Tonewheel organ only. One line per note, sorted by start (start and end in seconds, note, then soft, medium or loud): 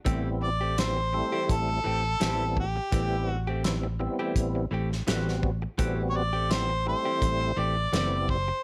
0.06 0.50 G3 medium
0.06 0.50 B3 medium
0.06 0.50 C4 medium
0.06 0.50 E4 medium
0.78 1.01 G3 medium
0.78 1.01 B3 medium
0.78 1.01 C4 medium
0.78 1.01 E4 medium
1.14 1.80 G3 medium
1.14 1.80 A3 medium
1.14 1.80 C4 medium
1.14 1.80 E4 medium
2.21 2.65 G3 medium
2.21 2.65 B3 medium
2.21 2.65 C4 medium
2.21 2.65 E4 medium
2.93 3.37 G3 medium
2.93 3.37 B3 medium
2.93 3.37 C4 medium
2.93 3.37 E4 medium
3.64 3.87 G3 medium
3.64 3.87 B3 medium
3.64 3.88 C4 medium
3.64 3.88 E4 medium
4.00 4.66 G3 medium
4.00 4.66 B3 medium
4.00 4.66 C4 medium
4.00 4.66 E4 loud
5.08 5.52 G3 medium
5.08 5.52 B3 medium
5.08 5.52 C4 medium
5.08 5.52 F#4 loud
5.79 6.23 G3 medium
5.79 6.23 B3 medium
5.79 6.23 C4 medium
5.79 6.23 F#4 medium
6.50 6.73 G3 medium
6.50 6.73 B3 medium
6.50 6.73 C4 medium
6.50 6.73 E4 medium
6.87 7.52 G3 medium
6.87 7.52 A3 medium
6.87 7.52 C4 medium
6.87 7.52 E4 medium
7.93 8.37 G3 medium
7.93 8.37 B3 medium
7.93 8.37 C4 medium
7.93 8.37 E4 medium